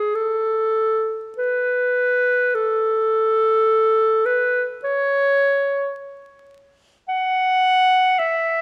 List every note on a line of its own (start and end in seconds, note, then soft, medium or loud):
0.00 0.17 G#4 soft
0.15 1.21 A4 medium
1.38 2.56 B4 medium
2.55 4.27 A4 medium
4.26 4.65 B4 medium
4.84 5.96 C#5 medium
7.09 8.21 F#5 medium
8.19 8.62 E5 medium